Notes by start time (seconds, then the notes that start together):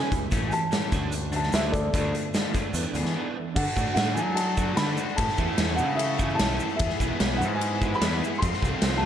Already playing: C#3 B3 C#4 E5 G#5
0.11 C#2 C#3 G#3, kick, closed hi-hat, shaker
0.31 A1 A2 E3 G#3 A3 C#4 C#5, kick, closed hi-hat, shaker
0.48 A2 E3 G#5, shaker
0.53 A5, closed hi-hat
0.72 A2 E3 A3 C#4, snare, closed hi-hat, shaker
0.92 D2 D3 A3 C#4 D4 F#4, kick, closed hi-hat, shaker
1.12 D3 A3, closed hi-hat, shaker
1.32 D3 F#3 A3 D4 A5, closed hi-hat, shaker
1.43 snare
1.52 D2 D3 A3 D4 E5, snare, closed hi-hat, shaker
1.72 D3 A3 A4 D5, kick, closed hi-hat, shaker
1.94 D2 D3 F3 A3 B3 D4 F4, kick, closed hi-hat, shaker
2.14 D3 A3, closed hi-hat
2.34 D3 F3 A3 D4, snare, closed hi-hat, shaker
2.54 D3 A3 D4, kick, closed hi-hat, shaker
2.74 E2 E3 B3 D4 A4, closed hi-hat, shaker
2.94 D2 E3 B3 D4 G#4, closed hi-hat, shaker
3.03 E3, snare
3.16 E3 B3 D4
3.37 E3 B3
3.54 D3 A3 D4 F#5, kick, crash, shaker
3.58 D4 F#4 D5 A5
3.76 A2 D3 A3 D4 F#4, kick, shaker
3.93 A2 D3 A3 D4 F#5, snare, ride bell, shaker
3.98 D4 F#4
4.02 F#4
4.08 snare
4.13 F#3 E4 G#5, shaker
4.34 F#4 A5, ride bell, shaker
4.57 D3 A3 D4 F#4, kick, shaker
4.63 D4
4.76 D3 A3 D4 F#4 B5, snare, ride bell, shaker
4.88 snare
4.97 D4 F#4, shaker
5.09 shaker
5.16 A2 E3 A3 C#4 E4 A4 E5 A5 C#6, kick, ride bell, shaker
5.28 snare
5.37 E2 E3 A3 C#4 E4 A4, kick, shaker
5.58 E2 E3 A3 C#4 E4 A4, snare, ride bell, shaker
5.75 D4 F#5, shaker
5.79 C#3
5.95 C#4 E5
5.99 ride bell, shaker
6.19 E3 A3 C#4 E4 A4, kick, shaker
6.30 shaker
6.35 E4 A5
6.39 B1 E3 A3 C#4 E4 A4, snare, ride bell, shaker
6.50 snare
6.60 A3 C#4 A4, shaker
6.70 shaker
6.76 B3 E5, ride bell
6.80 E2 E3 B3 E4 G#4 B5, kick, shaker
6.90 snare
7.00 B1 E3 G#3 B3 E4 G#4, kick, shaker
7.20 B1 E3 G#3 B3 E4 G#4, snare, ride bell, shaker
7.31 snare
7.36 D4 F#5
7.41 G#2, shaker
7.55 E4 G#5
7.61 ride bell, shaker
7.82 E3 G#3 B3 E4 G#4, kick, shaker
7.94 G#4 B5, shaker
8.02 E2 E3 G#3 B3 E4 G#4, snare, ride bell, shaker
8.12 snare
8.22 B3 E4 G#4, shaker
8.35 C6, shaker
8.39 F2 F3 A3 C4 A4, kick, ride bell
8.44 F4 A4 F5 C6, shaker
8.53 snare
8.62 C2 F3 A3 C4 F4, kick, shaker
8.82 C2 F3 A3 C4 F4, snare, ride bell, shaker
8.93 snare
8.97 F4 A5
9.02 A2